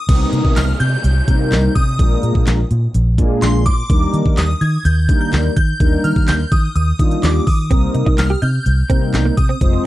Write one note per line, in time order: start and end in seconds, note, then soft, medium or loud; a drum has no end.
0.00 0.59 D#6 medium
0.09 0.24 C2 loud
0.09 0.68 G3 medium
0.09 0.69 A#3 medium
0.09 0.69 C4 medium
0.09 0.69 D#4 medium
0.09 0.69 A#4 medium
0.09 kick loud
0.09 closed hi-hat medium
0.09 crash loud
0.09 downlifter medium
0.33 0.40 C3 loud
0.33 closed hi-hat medium
0.45 0.52 C3 medium
0.45 kick medium
0.56 0.72 C2 loud
0.56 0.67 F6 loud
0.56 snare medium
0.56 clap loud
0.56 closed hi-hat loud
0.80 0.96 C3 medium
0.80 1.78 G6 loud
0.80 closed hi-hat medium
1.04 1.20 C2 loud
1.04 closed hi-hat loud
1.28 1.53 C3 loud
1.28 1.73 G3 medium
1.28 1.73 A#3 medium
1.28 1.73 C4 medium
1.28 1.73 D#4 medium
1.28 1.73 A#4 medium
1.28 kick loud
1.28 closed hi-hat medium
1.52 1.67 C2 loud
1.52 snare loud
1.52 clap loud
1.52 closed hi-hat medium
1.75 2.01 C3 loud
1.75 2.20 D#6 medium
1.75 kick loud
1.75 closed hi-hat medium
1.99 2.15 A#1 medium
1.99 2.59 G#3 medium
1.99 2.59 A#3 medium
1.99 2.59 D4 medium
1.99 2.59 F4 medium
1.99 2.59 A#4 medium
1.99 kick loud
1.99 closed hi-hat medium
2.23 2.31 A#2 loud
2.23 closed hi-hat medium
2.35 2.43 A#2 loud
2.35 kick medium
2.47 2.62 A#1 loud
2.47 snare loud
2.47 clap loud
2.47 closed hi-hat loud
2.71 2.86 A#2 loud
2.71 closed hi-hat medium
2.94 3.20 A#1 loud
2.94 closed hi-hat loud
3.18 3.44 A#2 loud
3.18 3.63 G#3 loud
3.18 3.63 A#3 medium
3.18 3.63 D4 medium
3.18 3.63 F4 medium
3.18 3.63 G#4 loud
3.18 kick loud
3.18 closed hi-hat medium
3.42 3.68 A#1 loud
3.42 3.53 C6 loud
3.42 snare loud
3.42 clap loud
3.42 closed hi-hat medium
3.66 3.82 A#2 loud
3.66 4.10 D6 loud
3.66 kick loud
3.66 closed hi-hat medium
3.90 4.05 D#2 loud
3.90 4.49 G3 medium
3.90 4.50 A#3 medium
3.90 4.50 D4 medium
3.90 4.50 D#4 medium
3.90 4.50 A#4 medium
3.90 kick loud
3.90 closed hi-hat medium
4.13 4.21 D#3 loud
4.13 closed hi-hat medium
4.26 4.33 D#3 loud
4.26 kick medium
4.37 4.53 D#2 loud
4.37 4.62 D#6 loud
4.37 snare medium
4.37 clap loud
4.37 closed hi-hat loud
4.61 4.77 D#3 loud
4.61 4.86 G#6 loud
4.61 closed hi-hat medium
4.85 5.10 D#2 loud
4.85 5.20 G6 loud
4.85 closed hi-hat loud
5.09 5.34 D#3 loud
5.09 5.54 G3 medium
5.09 5.54 A#3 medium
5.09 5.54 D4 medium
5.09 5.54 D#4 medium
5.09 5.54 A#4 medium
5.09 kick loud
5.09 closed hi-hat medium
5.21 5.55 G6 loud
5.33 5.48 D#2 loud
5.33 snare loud
5.33 clap loud
5.33 closed hi-hat medium
5.56 5.72 D#3 loud
5.56 6.05 G6 loud
5.56 kick loud
5.56 closed hi-hat medium
5.80 5.96 D#2 loud
5.80 6.40 G3 medium
5.80 6.40 A#3 medium
5.80 6.40 D4 medium
5.80 6.40 D#4 medium
5.80 6.40 A#4 medium
5.80 kick loud
5.80 closed hi-hat medium
6.04 6.12 D#3 loud
6.04 6.29 F6 loud
6.04 closed hi-hat medium
6.16 6.29 D#3 loud
6.16 kick medium
6.28 6.43 D#2 loud
6.28 6.52 G6 loud
6.28 snare loud
6.28 clap loud
6.28 closed hi-hat loud
6.52 6.67 D#3 loud
6.52 6.74 D#6 loud
6.52 kick loud
6.52 closed hi-hat medium
6.75 6.91 D#2 loud
6.75 7.25 D#6 loud
6.75 closed hi-hat loud
6.99 7.15 D#3 loud
6.99 7.44 G3 medium
6.99 7.44 A#3 medium
6.99 7.44 D4 medium
6.99 7.44 D#4 medium
6.99 7.44 F4 medium
6.99 kick loud
6.99 closed hi-hat medium
7.11 closed hi-hat medium
7.23 7.39 D#2 loud
7.23 7.48 D6 medium
7.23 snare medium
7.23 clap loud
7.23 closed hi-hat medium
7.47 7.72 D#3 loud
7.47 8.14 D#6 medium
7.47 kick loud
7.47 open hi-hat medium
7.70 7.86 C2 loud
7.70 8.30 G3 medium
7.70 8.30 A#3 medium
7.70 7.79 C4 medium
7.70 8.31 C4 medium
7.70 8.31 D#4 medium
7.70 8.31 A#4 medium
7.70 kick loud
7.70 closed hi-hat medium
7.95 8.02 C3 loud
7.95 muted clean electric guitar stroke soft
7.95 closed hi-hat medium
8.06 8.14 C3 loud
8.06 8.15 D#4 medium
8.06 kick medium
8.18 8.34 C2 loud
8.18 8.43 F6 loud
8.18 muted clean electric guitar stroke soft
8.18 snare medium
8.18 clap loud
8.18 closed hi-hat loud
8.30 8.38 G4 medium
8.42 8.58 C3 loud
8.42 8.50 D#4 medium
8.42 9.40 G6 loud
8.42 closed hi-hat medium
8.66 8.82 C2 loud
8.66 closed hi-hat loud
8.89 9.15 C3 loud
8.89 9.34 G3 medium
8.89 9.35 A#3 medium
8.89 8.98 C4 medium
8.89 9.35 C4 medium
8.89 9.35 D#4 medium
8.89 9.35 A#4 medium
8.89 kick loud
8.89 closed hi-hat medium
9.14 9.29 C2 loud
9.14 snare medium
9.14 clap loud
9.14 closed hi-hat medium
9.25 9.34 A#3 medium
9.37 9.53 C3 loud
9.37 9.82 D#6 medium
9.37 muted clean electric guitar stroke soft
9.37 kick loud
9.37 closed hi-hat medium
9.49 9.57 C4 medium
9.61 9.77 F1 loud
9.61 9.86 G#3 medium
9.61 9.86 C4 medium
9.61 9.86 D#4 medium
9.61 9.86 F4 medium
9.61 9.86 C5 medium
9.61 kick loud
9.61 closed hi-hat medium
9.73 muted clean electric guitar stroke soft